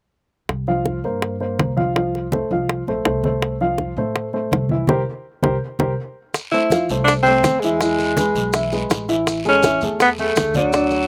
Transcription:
0.49 C2, high bongo, high conga
0.67 F3 F4 F5, high conga
0.86 high bongo, high conga
1.04 G2 A#3 A#4 C5, high conga
1.22 high bongo, high conga
1.40 A#3 A#4 C5, high conga
1.59 C2, high bongo, low bongo, high conga
1.77 F3 F4 F5, high conga
1.96 F3 F4 F5, high bongo, high conga
2.15 high bongo, high conga
2.32 A3 A4 C5, high bongo, high conga
2.51 C2 F3 F4 F5, high conga
2.69 high bongo, high conga
2.87 A#1 A3 A4 C5, high bongo, high conga
3.05 C2 A3 A4 C5, high bongo, low bongo, high conga
3.24 A3 A4 C5, high bongo, high conga
3.42 high bongo, high conga
3.61 F3 F4 F5, high conga
3.78 high bongo, high conga
3.97 A2 A3 A4 C5, high conga
4.16 high bongo, high conga
4.33 A3 A4 C5, high conga
4.51 C2, high bongo, low bongo, high conga
4.69 E3 E4 E5, high conga
4.87 C2 G4 A#4 C5, high bongo, high conga
5.43 C2 G4 A#4 C5, high bongo, high conga
5.79 C2 G4 A#4 C5, high bongo, high conga
6.34 high bongo, high conga, long guiro, maracas
6.51 A3 E4 A4 C5, high conga, maracas
6.70 F3 F4 F5, high bongo, high conga, short guiro, maracas
6.89 C2 A3 A4 C5, high conga, short guiro, maracas
7.04 D4, high conga, long guiro, maracas
7.08 high bongo
7.23 C4, high conga, maracas
7.28 A3 A4 C5
7.43 E2, high bongo, low bongo, high conga, short guiro, maracas
7.60 E3 G#3, short guiro, maracas
7.64 E4 E5
7.80 E3 E4 E5, high bongo, high conga, long guiro, maracas
7.98 high bongo, high conga, maracas
8.17 G#3 G#4 B4, high bongo, high conga, short guiro, maracas
8.35 B1, high conga, short guiro, maracas
8.53 E3 E4 E5, high bongo, high conga, long guiro, maracas
8.72 G#3 G#4 B4, high bongo, high conga, maracas
8.90 A1, high bongo, low bongo, high conga, short guiro, maracas
9.09 E3 E4 E5, high bongo, short guiro, maracas
9.27 high bongo, high conga, long guiro, maracas
9.45 G#3 C#4 G#4 A4, high conga, maracas
9.63 E3 E4 E5, high bongo, high conga, short guiro, maracas
9.81 E2 A3 G#4 A4, high conga, short guiro, maracas
10.00 B3, high bongo, high conga, long guiro, maracas
10.18 A3 G#4 A4, high conga, maracas
10.36 D2, high bongo, low bongo, high conga, short guiro, maracas
10.54 D3 F#3 D4 D5, high conga, short guiro, maracas
10.73 D3 D4 D5, high bongo, high conga, long guiro, maracas
10.90 high bongo, high conga, maracas

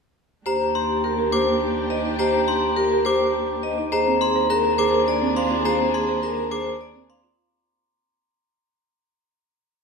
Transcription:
0.46 D#2 D4 G4 C5 A#5
0.75 G4 C6
1.04 G4 A#4
1.19 A#4
1.32 G4 C5 D6
1.90 C5 D#5
2.05 D#4
2.19 G4 C5 A#5
2.48 G4 C6
2.76 G4 A#4
2.92 A#4
3.05 G4 C5 D6
3.63 C5 D#5
3.78 D#4
3.92 D#2 D4 G#4 C5 A#5
4.07 C4
4.21 G#4 C6
4.36 C5
4.50 G#4 A#4 A#5
4.65 A#4
4.78 G#4 C5 D6
4.93 A#4
5.08 D5
5.22 C4
5.36 C5 F5 C6
5.51 F4
5.65 G#4 C5 A#5
5.80 C4
5.94 G#4 C6
6.09 C5
6.22 G#4 A#4 A#5
6.38 A#4
6.51 G#4 C5 D6
6.66 A#4
6.81 D5
6.95 C4
7.09 C5 F5 C6
7.24 F4

